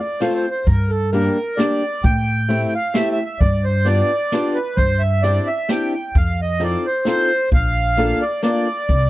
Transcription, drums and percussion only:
0.21 snare soft
0.21 closed hi-hat soft
0.67 kick medium
0.67 closed hi-hat soft
1.14 closed hi-hat soft
1.59 snare medium
1.59 closed hi-hat soft
2.04 kick medium
2.04 closed hi-hat soft
2.50 closed hi-hat soft
2.95 snare medium
2.95 closed hi-hat soft
3.41 kick medium
3.41 closed hi-hat soft
3.86 closed hi-hat soft
4.32 snare medium
4.32 closed hi-hat soft
4.77 kick medium
4.77 closed hi-hat soft
5.23 closed hi-hat soft
5.69 snare medium
5.69 closed hi-hat soft
6.14 kick medium
6.14 closed hi-hat soft
6.61 closed hi-hat soft
7.06 snare soft
7.06 closed hi-hat soft
7.50 kick medium
7.50 closed hi-hat soft
7.98 closed hi-hat soft
8.43 snare medium
8.43 closed hi-hat soft
8.88 kick medium
8.88 closed hi-hat soft

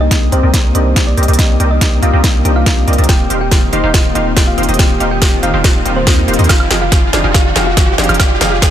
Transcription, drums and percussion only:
0.11 kick medium
0.11 snare soft
0.11 closed hi-hat medium
0.32 closed hi-hat medium
0.54 kick medium
0.54 snare soft
0.54 closed hi-hat medium
0.75 closed hi-hat medium
0.96 kick loud
0.96 snare medium
0.96 closed hi-hat medium
1.17 closed hi-hat soft
1.23 closed hi-hat medium
1.28 closed hi-hat soft
1.33 closed hi-hat medium
1.39 kick loud
1.39 snare medium
1.39 closed hi-hat medium
1.60 closed hi-hat medium
1.81 kick medium
1.81 snare soft
1.81 closed hi-hat medium
2.03 closed hi-hat medium
2.24 kick medium
2.24 snare medium
2.24 closed hi-hat medium
2.45 closed hi-hat medium
2.66 kick loud
2.66 snare medium
2.66 closed hi-hat medium
2.88 closed hi-hat soft
2.93 closed hi-hat medium
2.98 closed hi-hat soft
3.04 closed hi-hat medium
3.09 kick loud
3.09 snare medium
3.09 closed hi-hat medium
3.30 closed hi-hat medium
3.51 kick medium
3.51 snare medium
3.51 closed hi-hat medium
3.73 closed hi-hat medium
3.94 kick medium
3.94 snare medium
3.94 closed hi-hat medium
4.15 closed hi-hat medium
4.37 kick medium
4.37 snare medium
4.37 closed hi-hat medium
4.58 closed hi-hat soft
4.63 closed hi-hat medium
4.69 closed hi-hat soft
4.74 closed hi-hat medium
4.79 kick loud
4.79 snare medium
4.79 closed hi-hat medium
5.00 closed hi-hat medium
5.22 kick medium
5.22 snare medium
5.22 closed hi-hat medium
5.43 closed hi-hat medium
5.64 kick medium
5.64 snare medium
5.64 closed hi-hat medium
5.86 closed hi-hat medium
6.07 kick loud
6.07 snare medium
6.07 closed hi-hat medium
6.28 closed hi-hat soft
6.34 closed hi-hat medium
6.39 closed hi-hat soft
6.44 closed hi-hat medium
6.49 kick loud
6.49 snare medium
6.49 closed hi-hat medium
6.49 high woodblock medium
6.60 high woodblock medium
6.71 snare medium
6.71 closed hi-hat medium
6.92 kick loud
6.92 snare medium
6.92 closed hi-hat medium
7.13 snare medium
7.13 closed hi-hat medium
7.34 kick medium
7.34 snare medium
7.34 closed hi-hat medium
7.56 snare medium
7.56 closed hi-hat medium
7.77 kick loud
7.77 snare medium
7.77 closed hi-hat medium
7.98 snare medium
7.98 closed hi-hat soft
8.04 closed hi-hat medium
8.09 closed hi-hat soft
8.09 high woodblock medium
8.14 closed hi-hat medium
8.20 kick loud
8.20 snare medium
8.20 closed hi-hat medium
8.20 high woodblock medium
8.41 snare medium
8.41 closed hi-hat medium
8.62 kick medium
8.62 snare medium
8.62 closed hi-hat medium

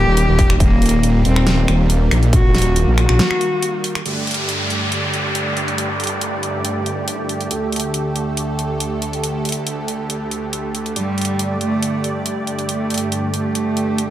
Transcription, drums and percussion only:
0.17 closed hi-hat medium
0.39 kick loud
0.39 open hi-hat medium
0.50 finger snap medium
0.50 closed hi-hat soft
0.60 kick loud
0.60 closed hi-hat medium
0.82 closed hi-hat soft
0.86 closed hi-hat medium
0.89 closed hi-hat medium
1.03 closed hi-hat medium
1.25 open hi-hat medium
1.36 finger snap medium
1.47 snare loud
1.47 closed hi-hat medium
1.68 finger snap medium
1.68 closed hi-hat medium
1.90 closed hi-hat medium
2.11 finger snap medium
2.11 open hi-hat medium
2.23 closed hi-hat soft
2.33 kick loud
2.33 closed hi-hat medium
2.55 snare medium
2.55 closed hi-hat soft
2.58 closed hi-hat medium
2.62 closed hi-hat medium
2.76 closed hi-hat medium
2.98 finger snap medium
2.98 open hi-hat medium
3.09 finger snap medium
3.19 snare loud
3.19 closed hi-hat medium
3.31 finger snap medium
3.41 closed hi-hat medium
3.62 closed hi-hat medium
3.84 open hi-hat loud
3.95 finger snap medium
3.95 closed hi-hat soft
4.06 closed hi-hat medium
4.27 closed hi-hat soft
4.31 closed hi-hat medium
4.34 closed hi-hat medium
4.49 closed hi-hat medium
4.70 closed hi-hat medium
4.92 closed hi-hat medium
5.14 closed hi-hat soft
5.35 closed hi-hat medium
5.57 closed hi-hat soft
5.68 closed hi-hat soft
5.78 closed hi-hat medium
6.00 closed hi-hat soft
6.04 closed hi-hat medium
6.07 closed hi-hat medium
6.21 closed hi-hat medium
6.43 closed hi-hat soft
6.65 closed hi-hat medium
6.86 closed hi-hat soft
7.08 closed hi-hat medium
7.29 closed hi-hat medium
7.41 closed hi-hat soft
7.51 closed hi-hat medium
7.72 closed hi-hat soft
7.76 closed hi-hat medium
7.80 closed hi-hat medium
7.94 closed hi-hat medium
8.16 closed hi-hat soft
8.37 closed hi-hat medium
8.59 closed hi-hat soft
8.80 closed hi-hat medium
9.02 closed hi-hat soft
9.13 closed hi-hat soft
9.24 closed hi-hat medium
9.45 closed hi-hat soft
9.49 closed hi-hat medium
9.52 closed hi-hat medium
9.67 closed hi-hat medium
9.88 closed hi-hat soft
10.10 closed hi-hat medium
10.31 closed hi-hat soft
10.53 closed hi-hat medium
10.75 closed hi-hat soft
10.86 closed hi-hat soft
10.96 closed hi-hat medium
11.18 closed hi-hat soft
11.21 closed hi-hat medium
11.25 closed hi-hat medium
11.39 closed hi-hat medium
11.61 closed hi-hat soft
11.83 closed hi-hat medium
12.04 closed hi-hat soft
12.26 closed hi-hat medium
12.47 closed hi-hat soft
12.59 closed hi-hat soft
12.69 closed hi-hat medium
12.90 closed hi-hat soft
12.94 closed hi-hat medium
12.98 closed hi-hat medium
13.12 closed hi-hat medium
13.34 closed hi-hat soft
13.55 closed hi-hat medium
13.77 closed hi-hat soft
13.98 closed hi-hat medium

